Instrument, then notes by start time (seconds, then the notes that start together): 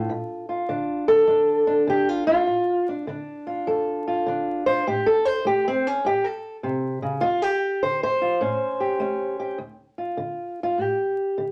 steel-string acoustic guitar
Already playing: A2 F4 A4
0.09 A#2
0.49 F4
0.69 D3 D4
1.08 A4
1.27 F3 D4
1.67 D4
1.87 D3 G4
2.09 F4
2.27 D4 F4
2.47 A#2
2.89 D4
3.07 D3 D4
3.47 F4
3.67 F3 A4
4.08 F4
4.26 D3 D4
4.66 F4 C5
4.87 A2 G4
5.06 A4
5.25 C5
5.45 A3 G4
5.68 C4
5.87 C#4
6.05 A2 G4
6.24 A4
6.63 C3
7.02 C#3
7.21 D2 F4
7.42 G4
7.83 D3 C5
8.03 C5
8.22 F4
8.41 A2 C#4
8.80 G4
9.00 A3 C#4
9.39 G4
9.58 D2
9.98 F4
10.17 D3
10.63 F4
10.78 A2 G4
11.38 D3